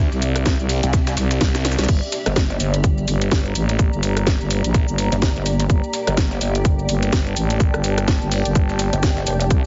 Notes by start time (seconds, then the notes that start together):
Already playing: C4 G4 D5 E5
0.12 C2, snare, shaker
0.22 open hi-hat, shaker
0.36 cross-stick, closed hi-hat, shaker
0.46 kick, snare, closed hi-hat, shaker
0.59 C2, shaker
0.69 open hi-hat, shaker
0.83 C2, closed hi-hat, shaker
0.93 kick, snare, closed hi-hat, shaker
1.07 snare, open hi-hat, shaker
1.17 C2, snare, open hi-hat, shaker
1.31 snare, closed hi-hat, shaker
1.41 C2, kick, snare, closed hi-hat, shaker
1.55 snare, shaker
1.65 snare, open hi-hat, shaker
1.72 snare, shaker
1.79 C2, snare, closed hi-hat, shaker
1.84 snare, shaker
1.89 G1 A#3 G4 D5 G5, kick, closed hi-hat, crash, shaker
2.02 shaker
2.12 snare, open hi-hat, shaker
2.26 G1, cross-stick, closed hi-hat, shaker
2.36 kick, snare, closed hi-hat, shaker
2.50 snare, shaker
2.60 G1, open hi-hat, shaker
2.68 A#5
2.74 closed hi-hat, shaker
2.84 kick, closed hi-hat, shaker
2.98 shaker
3.08 G1, open hi-hat, shaker
3.21 snare, closed hi-hat, shaker
3.31 G1, kick, snare, closed hi-hat, shaker
3.45 shaker
3.55 A1, open hi-hat, shaker
3.69 snare, closed hi-hat, shaker
3.79 kick, closed hi-hat, shaker
3.93 G1, shaker
4.03 open hi-hat, shaker
4.17 cross-stick, closed hi-hat, shaker
4.27 kick, snare, closed hi-hat, shaker
4.40 G1, shaker
4.51 open hi-hat, shaker
4.64 A#1, closed hi-hat, shaker
4.74 kick, snare, closed hi-hat, shaker
4.88 G1, shaker
4.98 open hi-hat, shaker
5.12 G1, snare, closed hi-hat, shaker
5.22 kick, snare, closed hi-hat, shaker
5.36 G1, shaker
5.46 snare, open hi-hat, shaker
5.60 closed hi-hat, shaker
5.70 G1, kick, closed hi-hat, shaker
5.84 shaker
5.93 snare, open hi-hat, shaker
6.07 G1, cross-stick, closed hi-hat, shaker
6.17 kick, snare, closed hi-hat, shaker
6.31 snare, shaker
6.41 G1, open hi-hat, shaker
6.55 A5, closed hi-hat, shaker
6.65 kick, closed hi-hat, shaker
6.79 shaker
6.89 G1, open hi-hat, shaker
7.02 snare, closed hi-hat, shaker
7.12 G1, kick, snare, closed hi-hat, shaker
7.26 shaker
7.36 A1, open hi-hat, shaker
7.50 snare, closed hi-hat, shaker
7.60 kick, closed hi-hat, shaker
7.74 G1, cross-stick, shaker
7.84 open hi-hat, shaker
7.98 cross-stick, closed hi-hat, shaker
8.08 kick, snare, closed hi-hat, shaker
8.21 G1, shaker
8.31 open hi-hat, shaker
8.45 G1, closed hi-hat, shaker
8.55 kick, closed hi-hat, shaker
8.69 snare, shaker
8.79 snare, open hi-hat, shaker
8.93 G1, closed hi-hat, shaker
9.03 kick, snare, closed hi-hat, shaker
9.17 snare, shaker
9.27 F1, open hi-hat, shaker
9.40 closed hi-hat, shaker
9.50 C2 C4 E5, kick, closed hi-hat, shaker